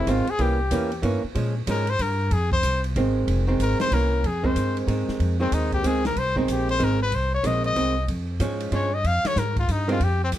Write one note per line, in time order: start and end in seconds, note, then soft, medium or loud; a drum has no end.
0.00 0.12 E4 medium
0.07 0.26 G#1 medium
0.07 0.25 D#3 medium
0.07 0.26 G#3 medium
0.07 0.26 C4 medium
0.07 0.31 F4 medium
0.07 kick soft
0.07 hi-hat pedal medium
0.07 ride medium
0.27 0.43 G#4 loud
0.27 muted upright bass stroke soft
0.27 ride medium
0.39 0.70 C2 medium
0.39 0.57 E3 medium
0.39 0.58 A#3 medium
0.39 0.58 C#4 medium
0.39 1.04 G4 medium
0.39 kick soft
0.39 ride medium
0.71 1.02 E2 medium
0.71 0.90 E3 medium
0.71 0.90 A#3 medium
0.71 0.90 C#4 medium
0.71 kick soft
0.71 hi-hat pedal medium
0.71 ride medium
0.92 ride medium
1.02 1.22 G2 medium
1.02 1.21 E3 medium
1.02 1.22 A#3 medium
1.02 1.22 C#4 medium
1.02 kick soft
1.02 ride medium
1.24 muted upright bass stroke soft
1.35 1.66 A#2 medium
1.35 1.53 F3 medium
1.35 1.54 G#3 medium
1.35 1.54 C#4 medium
1.35 kick soft
1.35 ride medium
1.67 1.98 G#2 loud
1.67 1.86 F3 medium
1.67 1.86 G#3 medium
1.67 1.86 C#4 medium
1.67 1.91 A#4 medium
1.67 kick soft
1.67 hi-hat pedal medium
1.67 ride medium
1.87 2.03 C5 loud
1.87 ride medium
1.99 2.30 G2 loud
1.99 2.35 A#4 medium
1.99 kick soft
1.99 ride medium
2.31 2.62 F2 medium
2.31 2.52 G#4 medium
2.31 kick soft
2.31 ride medium
2.52 2.82 C5 loud
2.52 kick medium
2.63 2.94 C2 loud
2.63 kick soft
2.63 hi-hat pedal medium
2.63 ride medium
2.84 ride medium
2.96 3.27 G#1 loud
2.96 3.44 D#3 medium
2.96 3.44 G#3 medium
2.96 3.45 C4 medium
2.96 kick soft
2.96 ride medium
3.27 3.59 F1 loud
3.27 kick soft
3.27 ride medium
3.47 3.89 D#3 medium
3.47 3.90 G#3 medium
3.47 3.90 C4 medium
3.60 3.79 G#1 loud
3.60 3.80 A#4 medium
3.60 kick soft
3.60 hi-hat pedal medium
3.60 ride medium
3.80 3.95 C5 loud
3.80 snare medium
3.80 ride medium
3.91 4.23 C2 medium
3.91 4.24 E3 medium
3.91 4.24 A#3 medium
3.91 4.24 C#4 medium
3.91 4.28 A#4 medium
3.91 kick soft
3.91 ride medium
4.23 4.55 F2 medium
4.23 4.47 G#4 medium
4.23 kick soft
4.23 ride medium
4.43 4.85 D#3 medium
4.43 4.86 G#3 medium
4.43 4.86 C4 medium
4.43 4.77 C5 loud
4.43 kick medium
4.56 4.87 G2 medium
4.56 kick soft
4.56 hi-hat pedal medium
4.56 ride medium
4.77 ride medium
4.87 5.07 G#2 loud
4.87 5.36 D#3 medium
4.87 5.36 G#3 medium
4.87 5.37 C4 medium
4.87 kick soft
4.87 ride medium
5.08 muted upright bass stroke soft
5.08 snare soft
5.20 5.51 F2 medium
5.20 kick soft
5.20 ride medium
5.40 5.81 D#3 medium
5.40 5.82 G#3 medium
5.40 5.82 C4 medium
5.40 5.55 C4 loud
5.52 5.83 D#2 medium
5.52 5.73 D#4 medium
5.52 kick soft
5.52 hi-hat pedal medium
5.52 ride medium
5.72 5.88 G4 medium
5.72 kick soft
5.72 ride soft
5.83 6.15 C#2 medium
5.83 6.02 D#3 medium
5.83 6.02 G#3 medium
5.83 6.03 C4 medium
5.83 6.06 G#4 medium
5.83 kick soft
5.83 hi-hat pedal medium
5.83 ride medium
6.05 6.20 A#4 loud
6.05 snare medium
6.05 ride medium
6.16 6.47 C2 medium
6.16 6.38 C5 loud
6.16 kick soft
6.16 ride medium
6.36 6.78 D#3 medium
6.36 6.78 G#3 medium
6.36 6.78 C4 medium
6.36 6.53 D#4 medium
6.36 kick soft
6.48 6.79 A#1 medium
6.48 6.70 G4 medium
6.48 kick soft
6.48 hi-hat pedal medium
6.48 ride medium
6.69 6.86 C5 loud
6.69 ride medium
6.79 7.11 G#1 loud
6.79 6.98 D#3 medium
6.79 6.98 G#3 medium
6.79 6.98 C4 medium
6.79 kick soft
6.79 ride medium
6.84 7.02 A#4 loud
7.02 7.16 B4 loud
7.12 7.43 C2 medium
7.12 7.34 C5 medium
7.12 kick soft
7.12 ride medium
7.34 7.48 C#5 loud
7.43 7.75 A#1 medium
7.43 7.74 D#3 medium
7.43 7.75 G#3 medium
7.43 7.75 C4 medium
7.43 7.65 D#5 loud
7.43 kick soft
7.43 hi-hat pedal medium
7.43 ride medium
7.64 8.06 D#5 loud
7.64 ride soft
7.76 8.07 C2 medium
7.76 7.94 D#3 medium
7.76 7.95 G#3 medium
7.76 7.95 C4 medium
7.76 kick soft
7.76 ride medium
8.08 8.39 F2 medium
8.08 kick soft
8.08 ride medium
8.40 8.71 G#2 medium
8.40 8.71 F3 medium
8.40 8.71 G#3 medium
8.40 8.72 C#4 medium
8.40 kick soft
8.40 hi-hat pedal medium
8.40 ride medium
8.60 ride medium
8.72 9.03 G2 loud
8.72 8.90 F3 medium
8.72 8.91 G#3 medium
8.72 8.91 C#4 medium
8.72 8.96 C#5 medium
8.72 kick soft
8.72 ride medium
8.94 9.08 D#5 loud
9.04 9.23 F2 medium
9.04 9.28 F5 loud
9.04 kick soft
9.04 ride medium
9.24 9.40 C#5 loud
9.24 muted upright bass stroke soft
9.24 snare medium
9.24 ride medium
9.36 9.67 G#2 loud
9.36 9.58 A#4 medium
9.36 kick soft
9.36 snare soft
9.36 hi-hat pedal medium
9.56 9.73 F4 medium
9.56 kick medium
9.56 ride medium
9.68 9.99 G2 loud
9.68 9.90 D#4 medium
9.68 hi-hat pedal medium
9.68 ride medium
9.88 9.99 D#3 medium
9.88 9.99 G#3 medium
9.88 9.99 C4 medium
9.88 10.05 F4 medium
9.88 ride medium
10.00 10.31 F2 medium
10.00 10.22 G4 loud
10.00 kick soft
10.00 ride medium
10.24 10.30 C4 loud
10.32 10.38 C#2 medium
10.32 kick soft
10.32 hi-hat pedal medium
10.32 ride medium